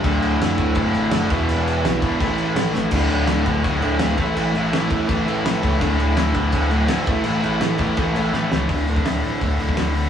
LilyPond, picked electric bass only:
\new Staff \with { instrumentName = "Picked electric bass" } { \clef bass \time 4/4 \key a \mixolydian \tempo 4 = 166 d,,8 d,,8 fis,,8 d,,8 fis,,8 a,,8 fis,,8 e,,8 | e,,4 b,,8 g,,8 a,,8 a,,8 a,,8 a,,8 | d,,8 d,,8 d,,8 d,,8 d,,8 d,,8 d,,8 a,,8 | a,,8 a,,8 a,,8 a,,8 a,,8 a,,8 a,,8 cis,8 |
d,,8 d,,8 d,,8 d,,8 d,,8 d,,8 gis,,8 a,,8 | a,,8 a,,8 a,,8 a,,8 a,,8 a,,8 a,,8 cis,8 | \key c \lydian d,,8 d,,8 d,,8 a,,8 d,,8 d,,8 d,,4 | }